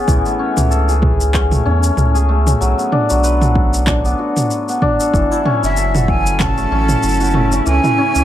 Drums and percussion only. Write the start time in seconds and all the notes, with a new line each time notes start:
0.08 kick, mid tom, shaker
0.26 shaker
0.57 mid tom, shaker
0.71 shaker
0.89 shaker
1.02 kick, mid tom
1.21 shaker
1.34 kick, clap, shaker
1.52 mid tom, shaker
1.83 shaker
1.97 mid tom, shaker
2.16 shaker
2.47 mid tom, shaker
2.62 shaker
2.79 shaker
2.92 mid tom
3.10 shaker
3.24 shaker
3.42 mid tom, shaker
3.55 kick
3.74 shaker
3.87 kick, clap, mid tom, shaker
4.05 shaker
4.37 mid tom, shaker
4.51 shaker
4.69 shaker
4.82 kick, mid tom
5.00 shaker
5.14 kick, shaker
5.32 shaker
5.46 mid tom
5.64 shaker
5.77 shaker
5.95 mid tom, shaker
6.08 kick
6.26 shaker
6.40 kick, clap, mid tom, shaker
6.58 shaker
6.89 mid tom, shaker
7.03 shaker
7.09 shaker
7.14 shaker
7.20 shaker
7.24 shaker
7.34 mid tom
7.52 shaker
7.66 shaker
7.84 mid tom, shaker
8.15 shaker